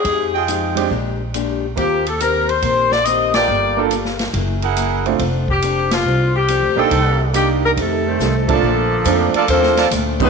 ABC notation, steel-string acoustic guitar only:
X:1
M:4/4
L:1/8
Q:"Swing" 1/4=140
K:F
V:1 name="Steel-string acoustic guitar"
[F,_A,_EG] z [F,A,EG] z [B,,A,DG] z [B,,A,DG] z | [_E,B,CG] z [E,B,CG] z [E,B,CG] z [E,B,CG] z | [G,B,FA] z [G,B,FA] z [_G,B,_F_A] z [G,B,FA] z | [F,CDA] z [F,CDA] z [F,CDA] z [F,CDA] z |
[C,B,_EG] z [C,B,EG] z [F,A,EG] z [F,A,EG] z | [K:Bb] [B,,F,A,D] z [B,,F,A,D] z [B,,F,A,D] z [B,,F,A,D] z |]